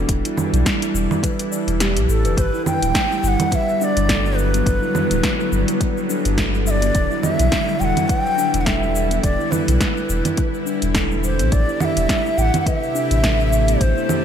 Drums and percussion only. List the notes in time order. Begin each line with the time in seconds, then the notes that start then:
0.09 kick, closed hi-hat, shaker
0.25 closed hi-hat, shaker
0.37 low conga, shaker
0.54 closed hi-hat, shaker
0.66 kick, snare, closed hi-hat, shaker
0.82 closed hi-hat, shaker
0.95 shaker
1.11 low conga, shaker
1.23 kick, closed hi-hat, shaker
1.39 closed hi-hat, shaker
1.52 shaker
1.68 closed hi-hat, shaker
1.80 snare, closed hi-hat, shaker
1.97 closed hi-hat, shaker
2.10 shaker
2.25 closed hi-hat, shaker
2.37 kick, closed hi-hat, shaker
2.54 shaker
2.66 low conga, shaker
2.82 closed hi-hat, shaker
2.95 kick, snare, closed hi-hat, shaker
3.12 shaker
3.24 shaker
3.40 closed hi-hat, low conga, shaker
3.52 kick, closed hi-hat, shaker
3.69 shaker
3.81 shaker
3.97 closed hi-hat, shaker
4.09 kick, snare, closed hi-hat, shaker
4.26 shaker
4.38 shaker
4.54 closed hi-hat, shaker
4.66 kick, closed hi-hat, shaker
4.83 shaker
4.95 low conga, shaker
5.11 closed hi-hat, shaker
5.23 kick, snare, closed hi-hat, shaker
5.40 shaker
5.53 shaker
5.68 closed hi-hat, shaker
5.81 kick, closed hi-hat, shaker
5.97 shaker
6.10 shaker
6.25 closed hi-hat, shaker
6.38 kick, snare, closed hi-hat, shaker
6.54 shaker
6.67 shaker
6.82 closed hi-hat, shaker
6.95 kick, closed hi-hat, shaker
7.11 shaker
7.23 low conga, shaker
7.39 closed hi-hat, shaker
7.52 kick, snare, closed hi-hat, shaker
7.69 shaker
7.81 shaker
7.97 closed hi-hat, low conga, shaker
8.09 kick, closed hi-hat, shaker
8.26 shaker
8.38 shaker
8.54 closed hi-hat, shaker
8.66 kick, snare, closed hi-hat, shaker
8.83 shaker
8.96 shaker
9.11 closed hi-hat, shaker
9.23 kick, closed hi-hat, shaker
9.40 shaker
9.52 low conga, shaker
9.68 closed hi-hat, shaker
9.81 kick, snare, closed hi-hat, shaker
9.97 shaker
10.10 shaker
10.25 closed hi-hat, low conga, shaker
10.37 kick, closed hi-hat, shaker
10.54 shaker
10.67 shaker
10.82 closed hi-hat, shaker
10.95 kick, snare, closed hi-hat, shaker
11.11 shaker
11.24 shaker
11.39 closed hi-hat, shaker
11.52 kick, closed hi-hat, shaker
11.69 shaker
11.80 low conga, shaker
11.97 closed hi-hat, shaker
12.09 kick, snare, closed hi-hat, shaker
12.26 shaker
12.39 shaker
12.54 closed hi-hat, low conga, shaker
12.66 kick, closed hi-hat, shaker
12.83 shaker
12.96 shaker
13.11 closed hi-hat, shaker
13.23 kick, snare, closed hi-hat, shaker
13.40 shaker
13.53 shaker
13.68 closed hi-hat, shaker
13.81 kick, closed hi-hat, shaker
13.97 shaker
14.09 low conga, shaker